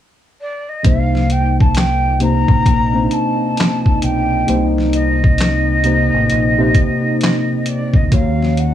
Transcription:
0.41 D5
0.69 D#5
0.83 C2 A#2 C3 A#3 D#4 C5 F5, kick, closed hi-hat
1.15 snare
1.30 G5, closed hi-hat
1.60 A5, kick
1.75 G5, snare, clap, closed hi-hat
2.20 C3 A#3 D#4 C5 A#5, closed hi-hat
2.48 A1, kick
2.66 A#1, kick, closed hi-hat
2.94 A#3 C4 D4 C5
3.01 D#4
3.11 A5, closed hi-hat
3.57 snare, clap, closed hi-hat
3.86 kick
4.02 B1 G5, closed hi-hat
4.47 C2 C3 A#3 C4 D#4 C5, closed hi-hat
4.78 snare
4.93 D#5, closed hi-hat
5.24 kick
5.38 snare, clap, closed hi-hat
5.84 C3 A#3 D#4 C5, closed hi-hat
6.14 A1
6.30 A#1, closed hi-hat
6.58 C3 A#3 D#4 C5
6.75 kick, closed hi-hat
7.21 snare, clap, closed hi-hat
7.66 D5, closed hi-hat
7.93 D2 D#5, kick
8.11 D#2 D#3 A#3 C#4 D#4 F#4 C#5 F5, kick, closed hi-hat
8.42 snare
8.57 F#5, closed hi-hat

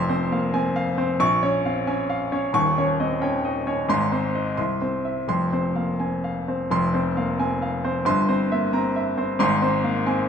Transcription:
Already playing: F1 F2 C6
0.09 C4 C5
0.32 A#3 F5
0.54 C4 G#5
0.76 F5
0.98 C4 C5
1.20 A#1 C#6
1.43 C#4 C#5
1.65 C4 F5
1.87 C#4 G#5
2.10 F5
2.32 C#4 C#5
2.53 D#1 D#2 C#6
2.78 C#4 C#5
3.00 C4 D#5
3.22 C#4 G5
3.44 D#4 D#5
3.67 C#4 C#5
3.89 G#1 G#2 C6
4.12 C4 C5
4.35 D#4 D#5
4.57 C2 C6
4.82 C4 C5
5.05 E5
5.28 F1 F2 C6
5.53 C4 C5
5.76 A#3 F5
6.00 C4 G#5
6.24 F5
6.48 C4 C5
6.71 F1 F2 C6
6.94 C4 C5
7.17 A#3 F5
7.39 C4 G#5
7.62 F5
7.84 C4 C5
8.05 G1 G2 C6
8.29 C4 C5
8.52 A#3 E5
8.73 C4 A#5
8.96 E5
9.18 C4 C5
9.39 G#1 G#2 C6
9.62 C4 C5
9.84 A#3 F5
10.06 C4 G#5

